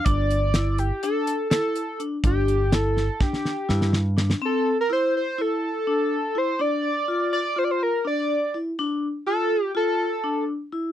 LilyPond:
<<
  \new Staff \with { instrumentName = "Analog synth lead" } { \time 9/8 \key a \phrygian \tempo 4. = 83 d''4. g'8 a'4 a'4~ a'32 r16. | g'4 a'4 g'4. r4 | a'8. bes'16 c''8 c''8 a'2 c''8 | d''4. d''8 c''32 d''32 c''16 bes'8 d''4~ d''32 r16. |
r4 a'4 a'4. r4 | }
  \new Staff \with { instrumentName = "Vibraphone" } { \time 9/8 \key a \phrygian d'4 e'4 d'4 e'4 d'8 | d'4 e'4 d'4 e'4 d'8 | c'4 e'4 e'4 d'4 e'8 | d'4 f'4 f'4 d'4 e'8 |
d'4 f'4 f'4 d'4 e'8 | }
  \new Staff \with { instrumentName = "Picked electric bass" } { \clef bass \time 9/8 \key a \phrygian g,,2 r2 r8 | g,,2 r4 g,4. | r1 r8 | r1 r8 |
r1 r8 | }
  \new DrumStaff \with { instrumentName = "Drums" } \drummode { \time 9/8 <hh bd>8 hh8 <hh sn>8 hh8 hh8 hh8 <hh sn>8 hh8 hh8 | <hh bd>8 hh8 <hh sn>8 sn8 <bd sn>16 sn16 sn8 sn16 sn16 sn8 sn16 sn16 | r4 r4 r4 r4. | r4 r4 r4 r4. |
r4 r4 r4 r4. | }
>>